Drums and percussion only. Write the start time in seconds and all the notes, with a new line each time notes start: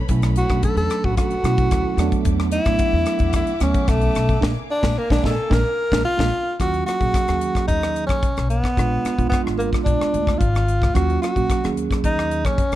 0.09 kick, closed hi-hat
0.22 cross-stick, closed hi-hat
0.36 closed hi-hat
0.49 kick, cross-stick, closed hi-hat
0.63 kick, closed hi-hat
0.77 closed hi-hat
0.90 cross-stick, closed hi-hat
1.04 kick
1.17 kick, cross-stick, closed hi-hat
1.31 closed hi-hat
1.44 cross-stick, closed hi-hat
1.58 kick, closed hi-hat
1.71 kick, cross-stick, closed hi-hat
1.98 cross-stick, closed hi-hat
2.12 kick, closed hi-hat
2.25 kick, closed hi-hat
2.40 cross-stick
2.51 closed hi-hat
2.65 kick, cross-stick, closed hi-hat
2.79 kick, closed hi-hat
3.06 cross-stick, closed hi-hat
3.19 kick, closed hi-hat
3.33 kick, cross-stick, closed hi-hat
3.47 closed hi-hat
3.60 cross-stick, closed hi-hat
3.74 kick, closed hi-hat
3.88 kick, cross-stick, closed hi-hat
4.01 closed hi-hat
4.15 cross-stick, closed hi-hat
4.29 kick, closed hi-hat
4.42 kick, snare
4.83 kick, snare
5.10 kick, snare
5.24 kick, snare
5.51 kick, snare
5.92 kick, snare
6.19 kick, snare
6.60 kick, cross-stick, closed hi-hat
6.74 closed hi-hat
6.88 cross-stick, closed hi-hat
7.01 kick, closed hi-hat
7.14 kick, cross-stick, closed hi-hat
7.28 cross-stick, closed hi-hat
7.41 closed hi-hat
7.55 kick, cross-stick, closed hi-hat
7.68 kick, closed hi-hat
7.83 cross-stick
7.96 closed hi-hat
8.09 kick, cross-stick, closed hi-hat
8.23 kick, closed hi-hat
8.37 cross-stick, closed hi-hat
8.50 closed hi-hat
8.64 kick, cross-stick
8.77 kick, cross-stick, closed hi-hat
9.05 cross-stick, closed hi-hat
9.19 kick, closed hi-hat
9.32 kick, cross-stick, closed hi-hat
9.47 cross-stick
9.60 closed hi-hat
9.73 kick, cross-stick, closed hi-hat
9.86 kick, closed hi-hat
10.02 cross-stick
10.14 closed hi-hat
10.27 kick, cross-stick
10.41 kick, closed hi-hat
10.55 cross-stick, closed hi-hat
10.68 closed hi-hat
10.82 kick, cross-stick
10.95 kick, cross-stick, closed hi-hat
11.10 closed hi-hat
11.23 cross-stick, closed hi-hat
11.36 kick, closed hi-hat
11.50 kick, cross-stick, closed hi-hat
11.64 cross-stick, closed hi-hat
11.77 closed hi-hat
11.91 kick, cross-stick, closed hi-hat
12.04 kick, closed hi-hat
12.19 cross-stick
12.31 closed hi-hat
12.45 kick, cross-stick, closed hi-hat
12.58 kick, closed hi-hat
12.72 closed hi-hat